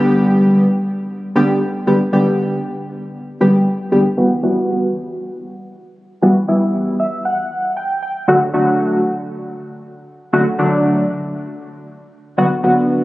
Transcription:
Already playing: D3 G3 B3 G4
1.35 D3 G3 B3 G4
1.87 D3 G3 B3 G4
2.13 D3 G3 B3 G4
3.41 D3 G3 B3 G4
3.92 D3 G3 B3 G4
4.17 E3 G3 B3 F#4
4.43 E3 G3 B3 F#4
6.22 E3 G3 B3 F#4
6.48 E3 G3 B3 E4
7.00 E5
7.25 F#5
7.77 G5
8.03 G5
8.28 D3 F#3 A3 F#4
8.53 D3 F#3 A3 F#4
10.33 D3 F#3 A3 F#4
10.58 D3 F#3 A3 D4
12.38 D3 F#3 B3 F#4
12.63 D3 F#3 B3 F#4

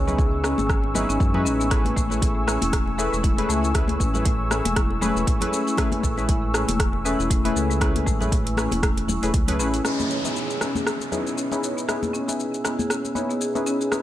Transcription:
Already playing: C#2 B4 G#5 C#6 E6
0.07 B3 C#4 D#4 E4 G#4 B4, muted conga, low conga, shaker
0.18 G#4, kick, shaker
0.44 C#4 D#4 E4 G#4 B4, cross-stick, muted conga, shaker
0.58 G#1 G#4, high conga, shaker
0.69 kick, cross-stick, shaker
0.84 muted conga
0.94 B3 C#4 D#4 E4 G#4 B4, high conga, low conga, shaker
1.09 G#1 C#4, shaker
1.20 F#2 G#3, kick, shaker
1.34 C#4 D#4 E4 G#4 B4, muted conga, low conga
1.45 A1 C#4, shaker
1.60 B3, shaker
1.71 A3 C#4 E4 G#4 B4, kick, cross-stick, closed hi-hat, muted conga, shaker
1.85 closed hi-hat, high conga
1.96 A1 A3, kick, shaker
2.10 A3 C#4 E4 G#4 B4, muted conga, shaker
2.22 kick, closed hi-hat, shaker
2.47 A3 C#4 E4 G#4 B4, cross-stick, muted conga, shaker
2.62 E1 E4, closed hi-hat, high conga, shaker
2.73 A3, kick, cross-stick, closed hi-hat, shaker
2.87 muted conga
2.98 A3 C#4 E4 G#4 A4 B4, shaker
3.13 E1 G#3, shaker
3.24 E4, kick, closed hi-hat, shaker
3.38 A3 C#4 E4 G#4 B4, closed hi-hat, muted conga
3.49 C#2 A3, shaker
3.63 E4, shaker
3.74 A3 C#4 E4 G#4 B4, kick, cross-stick, closed hi-hat, muted conga, shaker
3.88 closed hi-hat, high conga
4.00 A1 C#4, kick, shaker
4.14 A3 C#4 E4 G#4 B4, muted conga, low conga, shaker
4.25 A3, kick, closed hi-hat, shaker
4.51 A3 C#4 E4 G#4 A4 B4, cross-stick, muted conga, shaker
4.65 E1 G#3, closed hi-hat, high conga, shaker
4.76 E4, kick, cross-stick, closed hi-hat, shaker
4.91 muted conga
5.01 A3 C#4 E4 G#4 B4, high conga, low conga, shaker
5.16 E1 E4, shaker
5.27 A1, kick, closed hi-hat, shaker
5.41 A3 C#4 E4 G#4 B4, closed hi-hat, muted conga, low conga
5.52 C#4, shaker
5.67 E4, shaker
5.77 A3 C#4 E4 G#4 B4, kick, cross-stick, closed hi-hat, muted conga, shaker
5.92 closed hi-hat, high conga
6.03 A1 A4, kick, shaker
6.17 G#3 A3 C#4 E4 G#4 B4, muted conga, shaker
6.29 E4, kick, closed hi-hat, shaker
6.54 A3 C#4 E4 G#4 B4, cross-stick, muted conga, shaker
6.68 E1 E4, closed hi-hat, high conga, shaker
6.80 kick, cross-stick, closed hi-hat, shaker
6.93 muted conga
7.05 A3 C#4 E4 G#4 B4, shaker
7.19 E1 E4, shaker
7.30 A3, kick, closed hi-hat, shaker
7.45 A3 C#4 E4 G#4 B4, closed hi-hat, muted conga
7.55 C#2 A4, shaker
7.70 G#3, shaker
7.81 A3 C#4 E4 G#4 B4, kick, cross-stick, closed hi-hat, muted conga, shaker
7.96 closed hi-hat, high conga
8.07 A1 A3, kick, shaker
8.21 A3 C#4 E4 G#4 B4, muted conga, low conga, shaker
8.32 kick, closed hi-hat, shaker
8.47 closed hi-hat
8.57 A3 C#4 E4 G#4 B4, cross-stick, muted conga, high conga, shaker
8.72 E1 E4, closed hi-hat, high conga, shaker
8.83 A3, kick, cross-stick, closed hi-hat, shaker
8.97 closed hi-hat, muted conga
9.08 E4, high conga, low conga, shaker
9.23 E1 A3 C#4 E4 G#4 B4, closed hi-hat, shaker
9.34 C#2, kick, closed hi-hat, shaker
9.48 A3 C#4 E4 G#4 B4, closed hi-hat, muted conga, low conga
9.59 A1 A3 C#4 E4 G#4 B4, shaker
9.74 E4, closed hi-hat, shaker
9.85 B3 C#4 D#4 E4 G#4 B4 C#5 G#5 E6, cross-stick, downlifter, muted conga, shaker
10.00 high conga, shaker
10.10 C#5, shaker
10.25 B3 C#4 D#4 E4 G#4 B4, muted conga, shaker
10.36 G#4, shaker
10.50 shaker
10.61 C#4 D#4 E4 G#4 B4, cross-stick, muted conga, shaker
10.75 G#4, high conga, shaker
10.87 cross-stick, shaker
11.00 muted conga, shaker
11.12 C#4 D#4 E4 G#4 B4, low conga, shaker
11.26 G#4, shaker
11.37 C#4, shaker
11.52 C#4 D#4 E4 G#4 B4, muted conga, shaker
11.62 C#5, shaker
11.77 B3, shaker
11.88 C#4 D#4 E4 G#4 B4, cross-stick, muted conga, shaker
12.03 high conga, shaker
12.13 C#4, shaker
12.28 C#4 D#4 E4 G#4 B4, muted conga, shaker
12.40 shaker
12.54 shaker
12.64 C#4 D#4 E4 G#4 B4, cross-stick, muted conga, shaker
12.79 G#4, high conga, shaker
12.90 C#4, cross-stick, shaker
13.05 muted conga, shaker
13.15 C#4 D#4 E4 G#4 B4 C#5, high conga, shaker
13.30 B3, shaker
13.41 G#4, shaker
13.55 C#4 D#4 E4 G#4 B4, muted conga, shaker
13.66 C#4, shaker
13.81 G#4, shaker
13.92 C#4 D#4 E4 G#4 B4, cross-stick, muted conga, shaker

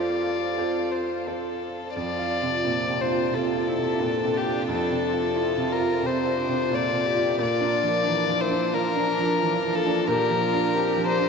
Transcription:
Already playing: F2 C4 F4 A4 C5 D5 F5
0.57 F4 A4 C5
0.92 C5
1.27 F4 A4 C5
1.95 F2 C4 F4 D5 A5
2.14 D5
2.19 F4
2.42 C3
2.48 F4
2.65 A#2 C4 D5
2.83 C5
2.89 C3
3.00 D4 F4 C5
3.11 F4
3.17 A4
3.33 C3 F4 A4
3.52 F4 D5
3.68 E4
3.79 C3
3.86 F4
4.00 A#2 D4
4.21 C3 A4
4.37 F4 G4
4.46 F4
4.68 F2 F4 A4
4.89 C3 D5
5.13 F4
5.22 F4
5.35 E4 F4 D5
5.55 C3 C5
5.71 F4 A#4
5.80 F4
5.88 A4
6.03 C3 C4 F4 C5
6.22 F4 D5
6.39 D4
6.49 C3
6.55 F4
6.71 A#2 F4 A4 D5
6.88 A4
6.92 C3
7.05 F4 G4
7.15 F4
7.38 A#2 A#3 D4 F4 A#4 D5
7.55 A#5
7.61 D4
7.83 F3
7.88 A#4
8.05 E3 D4 A#5
8.23 F5
8.28 F3
8.39 E4 A#4 C5
8.50 D4
8.74 F3 F4 A#4
8.90 A#5
8.96 D4
9.07 D4
9.19 F3
9.24 A#4
9.39 E3 F4
9.62 F3
9.75 A4 A#4
9.86 D4
10.06 A#2 G4 A#4
10.25 A#5
10.30 F3
10.42 F4
10.53 D4 A#4
10.73 C4 G4 A#5
10.92 F5
10.97 F3
11.08 A#4 C5
11.19 D4

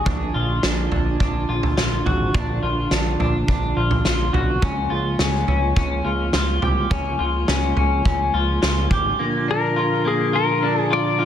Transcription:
Already playing: A#2
0.05 A#1 D3 F3 D4 F4, kick, floor tom
0.34 A#1 F4
0.63 A#1 D4, snare
0.92 A#1 D4, floor tom
1.20 A#1 D4, kick, floor tom
1.49 A#1 F4
1.63 floor tom
1.77 A#1 F4, snare
2.06 G#1 F#4, floor tom
2.34 A#1 D4, kick, floor tom
2.63 A#1 F4
2.91 A#1 D4, snare
3.19 A#1 D4, floor tom
3.48 A#1 D4, kick, floor tom
3.76 A#1 F4
3.91 floor tom
4.05 A#1 F4, snare
4.33 B1 F#4, floor tom
4.62 C#2 C#3 G#3 A#3 C#4, kick, floor tom
4.90 C#2 F4
5.19 C#2 C#4, snare
5.48 C#2 C#4, floor tom
5.76 C#2 C#4, kick, floor tom
6.05 C#2 F4
6.33 C#2 F4, snare
6.62 C2 G4, floor tom
6.91 C#2 C#4, kick, floor tom
7.19 C#2 F4
7.48 C#2 C#4, snare
7.77 C#2 C#4, floor tom
8.05 C#2 C#4, kick, floor tom
8.34 C#2 F4
8.62 C#2 F4, snare
8.91 G#1 G4, kick, floor tom
9.19 A#2 D3 F3 A#3 D4 F4
9.48 D4 A#4
9.76 F4
10.05 A#3 G#4
10.33 F4 A#4
10.63 D4
10.80 G#4
10.91 F4 D5
11.19 F4

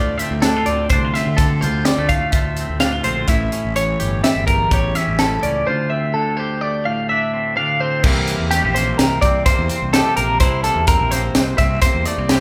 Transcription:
Already playing: D2 A2 D3 A3 C4 F4 D5
0.18 E5, closed hi-hat
0.22 C4
0.31 D2
0.42 D2 D4 A4, snare, closed hi-hat
0.56 F4
0.66 D2 C4 D5, closed hi-hat
0.90 C2 D2 D4 C5, kick, closed hi-hat
1.05 F4
1.14 C4 E5, snare, closed hi-hat
1.27 D3
1.37 D3 A4, kick, closed hi-hat
1.61 D2 F4 C5, closed hi-hat
1.85 G3 D5, snare, closed hi-hat
1.98 D2 A3
2.09 A2 F5, kick, closed hi-hat
2.32 D2 F4 E5, kick, closed hi-hat
2.57 C4, closed hi-hat
2.69 D2
2.80 D2 D4 F5, snare, closed hi-hat
2.92 F4
3.04 A#1 C4 C5, closed hi-hat
3.28 A1 A2 E4 E5, kick, closed hi-hat
3.52 C#4, closed hi-hat
3.65 A1
3.76 E3 C#5, closed hi-hat
4.00 G1 G4, closed hi-hat
4.23 G3 E5, snare, closed hi-hat
4.36 G1
4.47 E2 A#4, kick, closed hi-hat
4.71 A1 G4 C#5, kick, closed hi-hat
4.95 C#4 E5, snare, closed hi-hat
5.08 A1
5.19 A2 E4 A4, snare, closed hi-hat
5.43 C#2 C#4 D5, closed hi-hat
5.67 D2 F4 C5
5.90 C4 E5
6.14 D3 A4
6.37 G4 C5
6.61 A3 D5
6.85 A2 F5
7.09 D4 E5
7.33 C4
7.57 D2 D4 F5
7.81 C4 C5
8.03 C2 C3 E3 A#3 C4 E4 A#4, kick, crash
8.28 A#3, closed hi-hat
8.39 E2
8.51 A3 G4, snare, closed hi-hat
8.64 A#1 C4
8.74 A#3 C5, snare, closed hi-hat
8.97 C2 C3 A#4, snare, closed hi-hat
9.22 C2 C4 D5, kick, closed hi-hat
9.46 A#3 C5, kick, closed hi-hat
9.59 E2
9.69 C4, closed hi-hat
9.82 C2
9.93 C3 G4 A4, snare, closed hi-hat
10.16 A#1 A#3 A#4, closed hi-hat
10.40 C2 C3 E4 C5, kick, closed hi-hat
10.64 A#3 A4, closed hi-hat
10.76 E2
10.87 C4 A#4, kick, closed hi-hat
10.99 A#1
11.11 A#3 C5, snare, closed hi-hat
11.35 C2 C3, snare, closed hi-hat
11.58 C2 C4 E5, kick, closed hi-hat
11.82 A#3 C5, kick, snare, closed hi-hat
11.95 E2
12.06 A3 D5, closed hi-hat
12.18 C2 C4
12.29 C3 G4 C5, snare, closed hi-hat

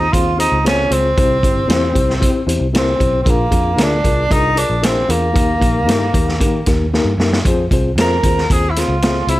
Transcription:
Already playing: D#4
0.12 D#2 C4 F4 G#4 C5, kick, closed hi-hat
0.37 C4 D#4 F4 G#4 C5, closed hi-hat
0.52 C#2
0.64 C4 C#4 F4 G#4 C5, snare, closed hi-hat
0.90 C#2 C4 F4 G#4 C5, closed hi-hat
1.17 C2 C3 C4 E4 G4 C5, kick, closed hi-hat
1.43 G1 C4 E4 G4 C5, kick, closed hi-hat
1.67 E2 C4 E4 G4 C5, snare, closed hi-hat
1.93 C2 C4 E4 G4 C5, kick, closed hi-hat
2.10 snare
2.20 C4 E4 G4 C5, kick, closed hi-hat
2.46 E2 C4 E4 G4 C5, closed hi-hat
2.60 C2
2.73 C4 E4 G4 A#4, snare, closed hi-hat
2.78 C4
2.99 B1 C4 E4 G4 C5, kick, closed hi-hat
3.23 A#1 A#2 C4 D4 F4 G#4, kick, closed hi-hat
3.27 A#3 A#4
3.51 F2 D4 F4 G#4 A#4, kick, closed hi-hat
3.76 D2 D4 F4 G#4 A#4, snare, closed hi-hat
3.83 D4
4.04 C2 D4 F4 G#4 A#4, kick, closed hi-hat
4.29 C2 D4 D#4 F4 G#4 A#4, kick, closed hi-hat
4.55 D4 F4 G#4 A#4, closed hi-hat
4.59 D4
4.70 A#1
4.82 C4 D4 F4 G#4 A#4, snare, closed hi-hat
5.08 E2 A#3 D4 F4 G#4 A#4, closed hi-hat
5.33 D#2 D#3 A#3 D#4 G4 A#4, kick, closed hi-hat
5.59 A#1 A#3 D#4 G4 A#4, kick, closed hi-hat
5.85 G2 A#3 D#4 G4 A#4, closed hi-hat
5.89 snare
6.13 D#2 A#3 D#4 G4 A#4, kick, closed hi-hat
6.28 snare
6.40 D#3 A#3 D#4 G4 A#4, kick, closed hi-hat
6.66 D#2 A#3 D#4 G4 A#4, kick, snare, closed hi-hat
6.93 A#3 D#4 G4 A#4, snare
7.04 G2
7.18 F#2 A#3 D#4 G4 A#4, snare
7.33 snare
7.45 F2 C4 F4 G#4 C5, kick, closed hi-hat
7.71 C2 C4 F4 G#4 C5, kick, closed hi-hat
7.96 F2 C4 F4 G#4 C5, snare, closed hi-hat
8.01 A#4
8.23 D#2 C4 F4 G#4 C5, kick, closed hi-hat
8.38 snare
8.50 D#2 C4 F4 G#4 C5, kick, closed hi-hat
8.70 E4
8.76 C4 F4 G#4 C5, snare, closed hi-hat
8.88 C#2
9.02 C4 F4 G#4 C5, snare, closed hi-hat
9.27 C#2 C4 E4 F4 G#4 C5, closed hi-hat

